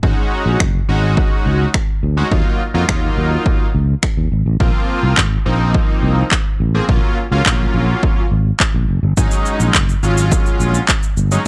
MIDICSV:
0, 0, Header, 1, 4, 480
1, 0, Start_track
1, 0, Tempo, 571429
1, 26, Time_signature, 4, 2, 24, 8
1, 9639, End_track
2, 0, Start_track
2, 0, Title_t, "Analog polysynth"
2, 0, Program_c, 0, 90
2, 24, Note_on_c, 0, 56, 90
2, 25, Note_on_c, 0, 61, 81
2, 26, Note_on_c, 0, 63, 83
2, 28, Note_on_c, 0, 66, 95
2, 510, Note_off_c, 0, 56, 0
2, 511, Note_off_c, 0, 61, 0
2, 512, Note_off_c, 0, 63, 0
2, 513, Note_off_c, 0, 66, 0
2, 744, Note_on_c, 0, 56, 89
2, 745, Note_on_c, 0, 61, 78
2, 747, Note_on_c, 0, 63, 78
2, 748, Note_on_c, 0, 66, 98
2, 1392, Note_off_c, 0, 56, 0
2, 1393, Note_off_c, 0, 61, 0
2, 1394, Note_off_c, 0, 63, 0
2, 1394, Note_off_c, 0, 66, 0
2, 1822, Note_on_c, 0, 56, 87
2, 1824, Note_on_c, 0, 61, 78
2, 1825, Note_on_c, 0, 63, 77
2, 1827, Note_on_c, 0, 66, 94
2, 1905, Note_off_c, 0, 56, 0
2, 1906, Note_off_c, 0, 61, 0
2, 1907, Note_off_c, 0, 63, 0
2, 1907, Note_off_c, 0, 66, 0
2, 1943, Note_on_c, 0, 54, 89
2, 1945, Note_on_c, 0, 58, 79
2, 1946, Note_on_c, 0, 63, 77
2, 1948, Note_on_c, 0, 65, 97
2, 2187, Note_off_c, 0, 54, 0
2, 2188, Note_off_c, 0, 58, 0
2, 2189, Note_off_c, 0, 63, 0
2, 2190, Note_off_c, 0, 65, 0
2, 2302, Note_on_c, 0, 54, 89
2, 2304, Note_on_c, 0, 58, 77
2, 2306, Note_on_c, 0, 63, 78
2, 2307, Note_on_c, 0, 65, 96
2, 2385, Note_off_c, 0, 54, 0
2, 2386, Note_off_c, 0, 58, 0
2, 2387, Note_off_c, 0, 63, 0
2, 2387, Note_off_c, 0, 65, 0
2, 2424, Note_on_c, 0, 54, 85
2, 2426, Note_on_c, 0, 58, 81
2, 2428, Note_on_c, 0, 63, 79
2, 2429, Note_on_c, 0, 65, 93
2, 3073, Note_off_c, 0, 54, 0
2, 3073, Note_off_c, 0, 58, 0
2, 3074, Note_off_c, 0, 63, 0
2, 3075, Note_off_c, 0, 65, 0
2, 3864, Note_on_c, 0, 53, 88
2, 3865, Note_on_c, 0, 58, 80
2, 3866, Note_on_c, 0, 60, 85
2, 3868, Note_on_c, 0, 65, 96
2, 4351, Note_off_c, 0, 53, 0
2, 4351, Note_off_c, 0, 58, 0
2, 4352, Note_off_c, 0, 60, 0
2, 4353, Note_off_c, 0, 65, 0
2, 4582, Note_on_c, 0, 53, 89
2, 4583, Note_on_c, 0, 58, 77
2, 4585, Note_on_c, 0, 60, 78
2, 4586, Note_on_c, 0, 63, 95
2, 5231, Note_off_c, 0, 53, 0
2, 5232, Note_off_c, 0, 58, 0
2, 5233, Note_off_c, 0, 60, 0
2, 5234, Note_off_c, 0, 63, 0
2, 5665, Note_on_c, 0, 53, 85
2, 5667, Note_on_c, 0, 58, 81
2, 5667, Note_on_c, 0, 60, 80
2, 5670, Note_on_c, 0, 68, 95
2, 5747, Note_off_c, 0, 53, 0
2, 5747, Note_off_c, 0, 58, 0
2, 5748, Note_off_c, 0, 60, 0
2, 5749, Note_off_c, 0, 68, 0
2, 5784, Note_on_c, 0, 54, 90
2, 5786, Note_on_c, 0, 58, 80
2, 5787, Note_on_c, 0, 61, 80
2, 5788, Note_on_c, 0, 65, 100
2, 6028, Note_off_c, 0, 54, 0
2, 6029, Note_off_c, 0, 58, 0
2, 6029, Note_off_c, 0, 61, 0
2, 6030, Note_off_c, 0, 65, 0
2, 6145, Note_on_c, 0, 54, 89
2, 6147, Note_on_c, 0, 58, 78
2, 6148, Note_on_c, 0, 61, 79
2, 6150, Note_on_c, 0, 65, 99
2, 6227, Note_off_c, 0, 54, 0
2, 6227, Note_off_c, 0, 58, 0
2, 6228, Note_off_c, 0, 61, 0
2, 6229, Note_off_c, 0, 65, 0
2, 6265, Note_on_c, 0, 54, 84
2, 6267, Note_on_c, 0, 58, 79
2, 6268, Note_on_c, 0, 61, 81
2, 6270, Note_on_c, 0, 65, 93
2, 6913, Note_off_c, 0, 54, 0
2, 6914, Note_off_c, 0, 58, 0
2, 6915, Note_off_c, 0, 61, 0
2, 6915, Note_off_c, 0, 65, 0
2, 7704, Note_on_c, 0, 54, 85
2, 7706, Note_on_c, 0, 56, 85
2, 7707, Note_on_c, 0, 61, 82
2, 7708, Note_on_c, 0, 63, 99
2, 8191, Note_off_c, 0, 54, 0
2, 8192, Note_off_c, 0, 56, 0
2, 8192, Note_off_c, 0, 61, 0
2, 8193, Note_off_c, 0, 63, 0
2, 8424, Note_on_c, 0, 54, 83
2, 8425, Note_on_c, 0, 56, 82
2, 8426, Note_on_c, 0, 61, 80
2, 8428, Note_on_c, 0, 65, 97
2, 9072, Note_off_c, 0, 54, 0
2, 9073, Note_off_c, 0, 56, 0
2, 9074, Note_off_c, 0, 61, 0
2, 9075, Note_off_c, 0, 65, 0
2, 9504, Note_on_c, 0, 54, 90
2, 9505, Note_on_c, 0, 56, 80
2, 9506, Note_on_c, 0, 61, 80
2, 9507, Note_on_c, 0, 63, 96
2, 9586, Note_off_c, 0, 54, 0
2, 9587, Note_off_c, 0, 56, 0
2, 9587, Note_off_c, 0, 61, 0
2, 9588, Note_off_c, 0, 63, 0
2, 9639, End_track
3, 0, Start_track
3, 0, Title_t, "Fretless electric bass"
3, 0, Program_c, 1, 35
3, 25, Note_on_c, 1, 32, 101
3, 105, Note_off_c, 1, 32, 0
3, 385, Note_on_c, 1, 34, 85
3, 464, Note_off_c, 1, 34, 0
3, 745, Note_on_c, 1, 32, 87
3, 982, Note_off_c, 1, 32, 0
3, 1226, Note_on_c, 1, 37, 85
3, 1384, Note_off_c, 1, 37, 0
3, 1705, Note_on_c, 1, 38, 90
3, 1864, Note_off_c, 1, 38, 0
3, 1945, Note_on_c, 1, 39, 102
3, 2025, Note_off_c, 1, 39, 0
3, 2306, Note_on_c, 1, 41, 89
3, 2385, Note_off_c, 1, 41, 0
3, 2425, Note_on_c, 1, 39, 86
3, 2584, Note_off_c, 1, 39, 0
3, 2666, Note_on_c, 1, 39, 82
3, 2824, Note_off_c, 1, 39, 0
3, 3146, Note_on_c, 1, 37, 92
3, 3305, Note_off_c, 1, 37, 0
3, 3506, Note_on_c, 1, 39, 85
3, 3585, Note_off_c, 1, 39, 0
3, 3627, Note_on_c, 1, 32, 84
3, 3705, Note_off_c, 1, 32, 0
3, 3746, Note_on_c, 1, 33, 89
3, 3826, Note_off_c, 1, 33, 0
3, 3865, Note_on_c, 1, 34, 98
3, 3945, Note_off_c, 1, 34, 0
3, 4227, Note_on_c, 1, 36, 86
3, 4306, Note_off_c, 1, 36, 0
3, 4347, Note_on_c, 1, 32, 91
3, 4505, Note_off_c, 1, 32, 0
3, 4587, Note_on_c, 1, 34, 87
3, 4824, Note_off_c, 1, 34, 0
3, 5064, Note_on_c, 1, 36, 96
3, 5223, Note_off_c, 1, 36, 0
3, 5545, Note_on_c, 1, 33, 88
3, 5704, Note_off_c, 1, 33, 0
3, 5786, Note_on_c, 1, 34, 98
3, 5865, Note_off_c, 1, 34, 0
3, 6145, Note_on_c, 1, 37, 91
3, 6224, Note_off_c, 1, 37, 0
3, 6266, Note_on_c, 1, 34, 82
3, 6424, Note_off_c, 1, 34, 0
3, 6505, Note_on_c, 1, 34, 89
3, 6663, Note_off_c, 1, 34, 0
3, 6985, Note_on_c, 1, 32, 93
3, 7144, Note_off_c, 1, 32, 0
3, 7345, Note_on_c, 1, 34, 96
3, 7425, Note_off_c, 1, 34, 0
3, 7464, Note_on_c, 1, 30, 84
3, 7544, Note_off_c, 1, 30, 0
3, 7584, Note_on_c, 1, 31, 93
3, 7664, Note_off_c, 1, 31, 0
3, 7706, Note_on_c, 1, 32, 106
3, 7785, Note_off_c, 1, 32, 0
3, 8065, Note_on_c, 1, 34, 86
3, 8144, Note_off_c, 1, 34, 0
3, 8186, Note_on_c, 1, 30, 94
3, 8344, Note_off_c, 1, 30, 0
3, 8426, Note_on_c, 1, 32, 88
3, 8663, Note_off_c, 1, 32, 0
3, 8904, Note_on_c, 1, 34, 89
3, 9063, Note_off_c, 1, 34, 0
3, 9385, Note_on_c, 1, 31, 84
3, 9544, Note_off_c, 1, 31, 0
3, 9639, End_track
4, 0, Start_track
4, 0, Title_t, "Drums"
4, 26, Note_on_c, 9, 36, 108
4, 110, Note_off_c, 9, 36, 0
4, 506, Note_on_c, 9, 26, 115
4, 506, Note_on_c, 9, 36, 113
4, 590, Note_off_c, 9, 26, 0
4, 590, Note_off_c, 9, 36, 0
4, 985, Note_on_c, 9, 36, 114
4, 1069, Note_off_c, 9, 36, 0
4, 1463, Note_on_c, 9, 26, 107
4, 1465, Note_on_c, 9, 36, 93
4, 1547, Note_off_c, 9, 26, 0
4, 1549, Note_off_c, 9, 36, 0
4, 1945, Note_on_c, 9, 36, 114
4, 2029, Note_off_c, 9, 36, 0
4, 2425, Note_on_c, 9, 36, 106
4, 2426, Note_on_c, 9, 26, 114
4, 2509, Note_off_c, 9, 36, 0
4, 2510, Note_off_c, 9, 26, 0
4, 2905, Note_on_c, 9, 36, 115
4, 2989, Note_off_c, 9, 36, 0
4, 3384, Note_on_c, 9, 26, 105
4, 3385, Note_on_c, 9, 36, 89
4, 3468, Note_off_c, 9, 26, 0
4, 3469, Note_off_c, 9, 36, 0
4, 3866, Note_on_c, 9, 36, 106
4, 3950, Note_off_c, 9, 36, 0
4, 4346, Note_on_c, 9, 36, 111
4, 4347, Note_on_c, 9, 39, 113
4, 4430, Note_off_c, 9, 36, 0
4, 4431, Note_off_c, 9, 39, 0
4, 4825, Note_on_c, 9, 36, 114
4, 4909, Note_off_c, 9, 36, 0
4, 5304, Note_on_c, 9, 39, 102
4, 5305, Note_on_c, 9, 36, 89
4, 5388, Note_off_c, 9, 39, 0
4, 5389, Note_off_c, 9, 36, 0
4, 5786, Note_on_c, 9, 36, 112
4, 5870, Note_off_c, 9, 36, 0
4, 6266, Note_on_c, 9, 36, 112
4, 6267, Note_on_c, 9, 39, 116
4, 6350, Note_off_c, 9, 36, 0
4, 6351, Note_off_c, 9, 39, 0
4, 6745, Note_on_c, 9, 36, 118
4, 6829, Note_off_c, 9, 36, 0
4, 7224, Note_on_c, 9, 39, 104
4, 7225, Note_on_c, 9, 36, 91
4, 7308, Note_off_c, 9, 39, 0
4, 7309, Note_off_c, 9, 36, 0
4, 7705, Note_on_c, 9, 36, 108
4, 7705, Note_on_c, 9, 82, 77
4, 7789, Note_off_c, 9, 36, 0
4, 7789, Note_off_c, 9, 82, 0
4, 7823, Note_on_c, 9, 82, 52
4, 7907, Note_off_c, 9, 82, 0
4, 7944, Note_on_c, 9, 82, 52
4, 8028, Note_off_c, 9, 82, 0
4, 8064, Note_on_c, 9, 82, 77
4, 8148, Note_off_c, 9, 82, 0
4, 8185, Note_on_c, 9, 82, 68
4, 8186, Note_on_c, 9, 36, 112
4, 8187, Note_on_c, 9, 39, 116
4, 8269, Note_off_c, 9, 82, 0
4, 8270, Note_off_c, 9, 36, 0
4, 8271, Note_off_c, 9, 39, 0
4, 8308, Note_on_c, 9, 82, 56
4, 8392, Note_off_c, 9, 82, 0
4, 8427, Note_on_c, 9, 82, 51
4, 8511, Note_off_c, 9, 82, 0
4, 8547, Note_on_c, 9, 82, 77
4, 8631, Note_off_c, 9, 82, 0
4, 8666, Note_on_c, 9, 36, 118
4, 8666, Note_on_c, 9, 82, 76
4, 8750, Note_off_c, 9, 36, 0
4, 8750, Note_off_c, 9, 82, 0
4, 8786, Note_on_c, 9, 82, 49
4, 8870, Note_off_c, 9, 82, 0
4, 8906, Note_on_c, 9, 82, 49
4, 8990, Note_off_c, 9, 82, 0
4, 9024, Note_on_c, 9, 82, 70
4, 9108, Note_off_c, 9, 82, 0
4, 9144, Note_on_c, 9, 39, 109
4, 9145, Note_on_c, 9, 36, 93
4, 9145, Note_on_c, 9, 82, 71
4, 9228, Note_off_c, 9, 39, 0
4, 9229, Note_off_c, 9, 36, 0
4, 9229, Note_off_c, 9, 82, 0
4, 9264, Note_on_c, 9, 82, 49
4, 9348, Note_off_c, 9, 82, 0
4, 9383, Note_on_c, 9, 82, 49
4, 9467, Note_off_c, 9, 82, 0
4, 9505, Note_on_c, 9, 82, 71
4, 9589, Note_off_c, 9, 82, 0
4, 9639, End_track
0, 0, End_of_file